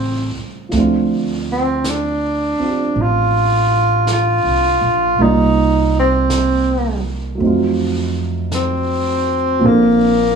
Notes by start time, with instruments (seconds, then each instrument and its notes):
Already playing: upright bass A1, grand piano C#3 G3 A3 C4 F4, tenor saxophone C4
0.36 muted upright bass stroke
0.69 upright bass D2, grand piano F3 A3, brush sweep, snare
0.74 grand piano C4 D4
0.80 grand piano F4
1.52 tenor saxophone C4
1.84 brush sweep, snare, hi-hat pedal
1.89 tenor saxophone D4
2.59 grand piano C4 D4 F4 G4, muted upright bass stroke
2.96 upright bass A1, brush sweep
3.01 tenor saxophone F4
4.07 brush sweep, snare, hi-hat pedal
4.13 tenor saxophone F4
4.44 upright bass C2
4.81 upright bass A#1
5.18 upright bass C2, grand piano G3 A#3 D#4 F4 D5, brush sweep
5.22 tenor saxophone D#4
5.99 tenor saxophone C4
6.30 brush sweep, snare, hi-hat pedal
7.35 grand piano F#3 A3
7.40 upright bass F2, grand piano C4 D#4, brush sweep
7.46 grand piano F4
8.52 tenor saxophone C4, brush sweep, snare, hi-hat pedal
9.59 upright bass A#1, grand piano A#2 F3 C4 D4, brush sweep
9.64 tenor saxophone A#3, grand piano A4